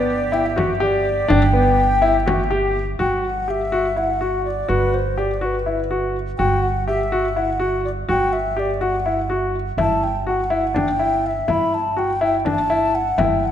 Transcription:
0.00 1.27 G1 medium
0.00 2.96 E3 medium
0.00 2.96 B3 medium
0.00 2.96 G4 medium
0.00 0.35 D5 medium
0.32 0.45 E4 medium
0.32 0.47 G5 medium
0.46 0.84 E5 medium
0.56 0.69 F#4 medium
0.56 frame drum medium
0.80 1.06 G4 medium
0.80 1.32 D5 medium
1.28 2.96 G1 medium
1.28 1.41 D4 medium
1.28 2.51 G5 medium
1.28 frame drum soft
1.53 1.78 B3 medium
2.02 2.15 E4 medium
2.26 2.39 F#4 medium
2.26 frame drum medium
2.51 2.76 G4 medium
2.99 4.66 G1 medium
2.99 3.24 F#4 medium
2.99 3.26 G5 medium
3.24 3.52 F#5 medium
3.48 3.60 G4 medium
3.48 3.99 E5 medium
3.72 3.85 F#4 medium
3.96 4.09 E4 medium
3.96 4.45 F#5 medium
4.21 4.46 F#4 medium
4.45 4.71 D5 medium
4.68 6.36 G1 medium
4.68 4.94 F#4 medium
4.68 4.95 B4 medium
4.94 5.20 C5 medium
5.18 5.30 G4 medium
5.18 5.47 D5 medium
5.41 5.54 F#4 medium
5.41 6.16 B4 medium
5.66 5.79 E4 medium
5.91 6.16 F#4 medium
6.38 8.06 G1 medium
6.38 6.64 F#4 medium
6.38 6.64 G5 medium
6.62 6.87 F#5 medium
6.87 7.00 G4 medium
6.87 7.39 E5 medium
7.12 7.25 F#4 medium
7.36 7.49 E4 medium
7.36 7.84 F#5 medium
7.60 7.85 F#4 medium
7.85 7.91 D5 medium
8.09 9.76 G1 medium
8.09 8.34 F#4 medium
8.09 8.34 G5 medium
8.33 8.61 E5 medium
8.57 8.69 G4 medium
8.57 8.83 D5 medium
8.81 8.94 F#4 medium
8.81 9.55 F#5 medium
9.06 9.18 E4 medium
9.30 9.55 F#4 medium
9.77 11.45 G1 medium
9.77 10.03 E4 medium
9.77 10.05 A5 medium
9.77 frame drum soft
10.04 10.28 G5 medium
10.27 10.39 F#4 medium
10.27 10.79 F#5 medium
10.50 10.63 E4 medium
10.74 10.87 D4 medium
10.74 11.28 G5 medium
10.74 frame drum medium
10.99 11.25 E4 medium
11.25 11.51 E5 medium
11.25 frame drum soft
11.48 13.15 G1 medium
11.48 11.73 E4 medium
11.48 11.76 B5 loud
11.48 frame drum soft
11.74 12.00 A5 medium
11.97 12.09 F#4 medium
11.97 12.22 G5 medium
12.21 12.34 E4 medium
12.21 12.45 G5 medium
12.45 12.58 D4 medium
12.45 12.97 A5 medium
12.45 frame drum medium
12.70 12.95 E4 medium
12.94 13.21 F#5 medium
12.94 frame drum soft
13.18 13.52 G1 medium
13.18 13.43 E4 medium
13.18 13.47 G5 medium
13.18 frame drum medium
13.45 13.52 F#5 medium

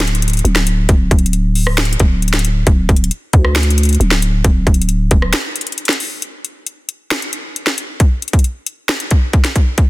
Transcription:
0.00 0.42 D1 loud
0.00 finger snap loud
0.00 snare loud
0.00 closed hi-hat medium
0.08 closed hi-hat medium
0.15 closed hi-hat medium
0.22 closed hi-hat medium
0.28 closed hi-hat medium
0.30 closed hi-hat soft
0.33 closed hi-hat medium
0.37 closed hi-hat soft
0.39 closed hi-hat soft
0.45 0.87 D1 loud
0.45 closed hi-hat medium
0.56 finger snap medium
0.56 snare medium
0.67 closed hi-hat medium
0.89 1.10 D1 loud
0.89 kick loud
0.89 closed hi-hat medium
1.11 1.96 D1 loud
1.11 kick medium
1.11 closed hi-hat medium
1.19 closed hi-hat medium
1.26 closed hi-hat medium
1.33 closed hi-hat medium
1.55 open hi-hat medium
1.67 cross-stick loud
1.78 finger snap loud
1.78 snare loud
1.78 closed hi-hat soft
1.85 closed hi-hat medium
1.93 closed hi-hat medium
2.00 2.64 D1 loud
2.00 kick loud
2.00 closed hi-hat medium
2.22 closed hi-hat soft
2.28 closed hi-hat medium
2.33 finger snap medium
2.33 snare medium
2.33 closed hi-hat medium
2.39 closed hi-hat medium
2.45 closed hi-hat medium
2.67 2.88 D1 loud
2.67 kick loud
2.67 closed hi-hat medium
2.89 3.10 D1 loud
2.89 kick medium
2.89 closed hi-hat soft
2.96 closed hi-hat medium
3.04 closed hi-hat medium
3.11 closed hi-hat medium
3.33 3.97 D2 loud
3.33 kick loud
3.33 closed hi-hat medium
3.45 cross-stick loud
3.56 finger snap loud
3.56 snare loud
3.56 closed hi-hat medium
3.63 closed hi-hat medium
3.70 closed hi-hat medium
3.78 closed hi-hat medium
3.83 closed hi-hat medium
3.85 closed hi-hat soft
3.89 closed hi-hat medium
3.93 closed hi-hat soft
3.95 closed hi-hat soft
4.00 4.43 D1 loud
4.00 closed hi-hat medium
4.11 finger snap medium
4.11 snare medium
4.22 closed hi-hat medium
4.44 4.66 D1 loud
4.44 kick loud
4.44 closed hi-hat medium
4.67 5.09 D1 loud
4.67 kick medium
4.67 closed hi-hat soft
4.74 closed hi-hat medium
4.82 closed hi-hat medium
4.89 closed hi-hat medium
5.11 5.33 D1 loud
5.11 kick medium
5.11 closed hi-hat medium
5.22 cross-stick loud
5.33 finger snap loud
5.33 snare loud
5.33 closed hi-hat medium
5.56 closed hi-hat medium
5.61 closed hi-hat medium
5.67 closed hi-hat medium
5.72 closed hi-hat soft
5.78 closed hi-hat medium
5.85 finger snap medium
5.85 snare medium
5.85 closed hi-hat medium
5.93 closed hi-hat medium
6.00 open hi-hat medium
6.22 closed hi-hat medium
6.45 closed hi-hat medium
6.67 closed hi-hat medium
6.89 closed hi-hat medium
7.11 finger snap medium
7.11 snare loud
7.11 closed hi-hat medium
7.22 closed hi-hat medium
7.33 closed hi-hat medium
7.56 closed hi-hat medium
7.67 finger snap medium
7.67 snare medium
7.78 closed hi-hat medium
8.00 kick loud
8.00 closed hi-hat medium
8.22 closed hi-hat medium
8.28 closed hi-hat medium
8.33 kick medium
8.33 closed hi-hat medium
8.39 closed hi-hat medium
8.44 closed hi-hat medium
8.67 closed hi-hat medium
8.89 finger snap medium
8.89 snare loud
8.89 closed hi-hat soft
9.00 closed hi-hat medium
9.11 kick medium
9.11 closed hi-hat medium
9.33 kick loud
9.33 closed hi-hat soft
9.45 finger snap medium
9.45 snare medium
9.45 closed hi-hat medium
9.56 kick loud
9.56 closed hi-hat medium
9.78 kick loud
9.78 closed hi-hat medium

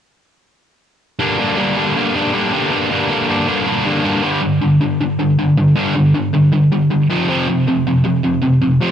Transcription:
1.19 1.39 G2 medium
1.19 1.38 D3 medium
1.19 1.39 G3 medium
1.19 1.40 A#3 medium
1.19 1.40 D4 loud
1.39 1.57 G2 medium
1.39 1.57 D3 medium
1.39 1.58 G3 medium
1.39 1.58 A#3 medium
1.39 1.59 D4 medium
1.57 1.76 G2 medium
1.57 1.76 D3 medium
1.57 1.77 G3 medium
1.57 1.78 A#3 loud
1.57 1.77 D4 loud
1.77 1.95 G2 medium
1.77 1.95 D3 medium
1.77 1.96 G3 medium
1.77 1.96 A#3 medium
1.77 1.97 D4 loud
1.96 2.14 G2 medium
1.96 2.14 D3 medium
1.96 2.15 G3 medium
1.96 2.15 A#3 medium
1.96 2.15 D4 medium
2.14 2.33 G2 medium
2.14 2.32 D3 medium
2.14 2.33 G3 medium
2.14 2.34 A#3 medium
2.14 2.34 D4 loud
2.33 2.52 G2 medium
2.33 2.51 D3 medium
2.33 2.53 G3 medium
2.33 2.53 A#3 medium
2.33 2.53 D4 medium
2.52 2.70 G2 medium
2.52 2.70 D3 medium
2.52 2.71 G3 medium
2.52 2.71 A#3 medium
2.52 2.71 D4 medium
2.71 2.90 G2 loud
2.71 2.90 D3 medium
2.71 2.90 G3 medium
2.71 2.91 A#3 loud
2.71 2.91 D4 loud
2.91 3.08 G2 medium
2.91 3.09 D3 medium
2.91 3.09 G3 medium
2.91 3.09 A#3 medium
2.91 3.10 D4 medium
3.09 3.28 G2 medium
3.09 3.29 D3 medium
3.09 3.29 G3 medium
3.09 3.29 A#3 loud
3.09 3.29 D4 loud
3.29 3.46 G2 medium
3.29 3.47 D3 medium
3.29 3.47 G3 medium
3.29 3.47 A#3 medium
3.29 3.48 D4 medium
3.48 3.65 G2 medium
3.48 3.65 D3 medium
3.48 3.65 G3 medium
3.48 3.66 A#3 medium
3.48 3.67 D4 medium
3.66 3.84 G2 medium
3.66 3.84 D3 medium
3.66 3.85 G3 loud
3.66 3.85 A#3 medium
3.66 3.86 D4 medium
3.85 4.03 G2 medium
3.85 4.03 D3 medium
3.85 4.03 G3 medium
3.85 4.04 A#3 medium
3.85 4.04 D4 medium
4.04 4.21 G2 medium
4.04 4.22 D3 loud
4.04 4.22 G3 loud
4.04 4.23 A#3 loud
4.04 4.23 D4 loud
4.23 4.41 G2 medium
4.23 4.41 D3 medium
4.23 4.42 G3 loud
4.42 4.60 G2 medium
4.42 4.60 D3 medium
4.61 4.79 G2 medium
4.61 4.79 D3 medium
4.81 4.98 G2 medium
4.81 4.98 D3 medium
5.01 5.17 G2 medium
5.01 5.17 D3 medium
5.19 5.36 G2 medium
5.19 5.36 D3 medium
5.39 5.56 G2 medium
5.39 5.56 D3 medium
5.57 5.75 G2 medium
5.57 5.75 D3 medium
5.76 5.94 G2 medium
5.76 5.94 D3 medium
5.76 5.94 G3 loud
5.95 6.12 G2 medium
5.95 6.13 D3 medium
6.14 6.31 G2 medium
6.14 6.32 D3 medium
6.33 6.50 G2 medium
6.33 6.51 D3 medium
6.52 6.69 G2 medium
6.52 6.70 D3 medium
6.72 6.89 G2 medium
6.72 6.89 D3 medium
6.90 7.08 G2 medium
6.90 7.08 D3 medium
7.10 7.27 F2 medium
7.10 7.28 C3 loud
7.10 7.28 F3 loud
7.29 7.46 F2 medium
7.29 7.47 C3 medium
7.29 7.47 F3 loud
7.49 7.65 F2 medium
7.49 7.65 C3 medium
7.67 7.84 F2 medium
7.67 7.84 C3 medium
7.87 8.03 F2 medium
7.87 8.04 C3 medium
8.04 8.22 F2 medium
8.04 8.22 C3 medium
8.24 8.41 F2 medium
8.24 8.42 C3 medium
8.42 8.60 F2 medium
8.42 8.60 C3 medium
8.62 8.79 F2 medium
8.62 8.79 C3 medium
8.81 8.91 F2 medium
8.81 8.91 C3 loud
8.81 8.91 F3 loud

